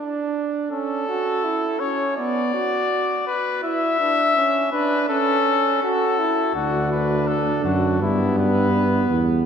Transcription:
Already playing: flugelhorn D4
0.71 flugelhorn C#4, trumpet A4
1.08 flugelhorn F#4
1.44 flugelhorn E4
1.80 flugelhorn C#4, trumpet C#5
2.16 flugelhorn B3, trumpet D5
2.54 flugelhorn F#4
3.27 trumpet B4
3.63 flugelhorn E4, trumpet E5
4.00 flugelhorn D4
4.36 flugelhorn C#4
4.72 flugelhorn D4, trumpet B4
5.09 flugelhorn C#4, trumpet A4
5.83 flugelhorn F#4, trumpet A4
6.19 flugelhorn E4
6.55 bass trombone D2, flugelhorn D4, trumpet F#4
6.92 trumpet B4
7.27 trumpet A4
7.64 bass trombone F#2, trumpet F#4
8.00 bass trombone G2, flugelhorn B3, trumpet E4
8.39 trumpet B4
9.10 bass trombone E2

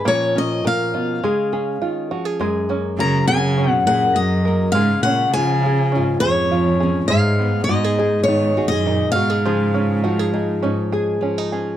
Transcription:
Already playing: five-string banjo B3 D#4 G#4
0.05 nylon-string guitar A#2 F3 C#4 F4 A#4, five-string banjo A#3, steel-string acoustic guitar C#5
0.35 nylon-string guitar C#4, five-string banjo C#4, steel-string acoustic guitar D#5
0.64 nylon-string guitar A#2, five-string banjo A#4, steel-string acoustic guitar F5
0.94 nylon-string guitar B2, five-string banjo F4
1.23 nylon-string guitar C#3 G#4, five-string banjo G#3
1.52 nylon-string guitar C#4, five-string banjo G#4
1.81 nylon-string guitar D#3, five-string banjo F4
2.11 nylon-string guitar F3, five-string banjo F#4
2.25 five-string banjo G#4
2.39 nylon-string guitar F#2 G#4, five-string banjo G#3
2.69 nylon-string guitar A#3, five-string banjo C#4
2.98 cello C#3, nylon-string guitar F#3 C#4, five-string banjo A#4, steel-string acoustic guitar A#5
3.27 cello C#3, five-string banjo F#4, nylon-string guitar G#4, steel-string acoustic guitar G#5
3.58 nylon-string guitar C#3 C#4, five-string banjo C#4
3.70 cello B2, steel-string acoustic guitar F#5
3.86 cello A#2, nylon-string guitar G#4, five-string banjo A#4, steel-string acoustic guitar F#5
4.14 cello F#2, nylon-string guitar F#3, five-string banjo F#4, steel-string acoustic guitar D#5
4.45 nylon-string guitar A#3, five-string banjo A#4
4.72 cello G#2, nylon-string guitar C#3, five-string banjo G#3, steel-string acoustic guitar F5
4.76 nylon-string guitar G#4
5.02 cello A#2, five-string banjo C#4, steel-string acoustic guitar F#5
5.07 nylon-string guitar C#4
5.32 cello C#3, nylon-string guitar F3, five-string banjo G#4, steel-string acoustic guitar G#5
5.36 nylon-string guitar F4
5.62 five-string banjo F4, nylon-string guitar G#4
5.92 nylon-string guitar G#2 F4, five-string banjo C#4
6.19 cello F2, five-string banjo G#4, steel-string acoustic guitar C#5
6.25 nylon-string guitar G#4
6.51 nylon-string guitar F3, five-string banjo F4
6.80 nylon-string guitar C#4, five-string banjo G#4
7.07 cello G#2, nylon-string guitar G#2 G#4, five-string banjo G#3, steel-string acoustic guitar F5
7.39 five-string banjo B3, nylon-string guitar B3
7.64 cello G#2, steel-string acoustic guitar D#5
7.69 nylon-string guitar G#3 D#4, five-string banjo F#4
7.84 five-string banjo G#4
7.99 five-string banjo D#4, nylon-string guitar G#4
8.24 cello G#2, steel-string acoustic guitar C#5
8.28 nylon-string guitar D#3 D#4, five-string banjo B3
8.57 nylon-string guitar F#4, five-string banjo G#4
8.67 cello F#2, steel-string acoustic guitar D#5
8.72 nylon-string guitar G#4
8.85 nylon-string guitar A#2, five-string banjo D#4
9.12 cello G#2, nylon-string guitar B2, five-string banjo F#4, steel-string acoustic guitar F5
9.30 five-string banjo G#4
9.45 nylon-string guitar C#3 G#4, five-string banjo F3
9.74 five-string banjo C#4, nylon-string guitar C#4
10.04 nylon-string guitar F3 D#4, five-string banjo F#4
10.19 five-string banjo G#4
10.34 five-string banjo D#4, nylon-string guitar G#4
10.63 nylon-string guitar G#2 D#4, five-string banjo C#4
10.92 five-string banjo G#4, nylon-string guitar G#4
11.21 nylon-string guitar F3, five-string banjo C#4
11.38 five-string banjo D#4
11.52 nylon-string guitar C#4, five-string banjo G#4

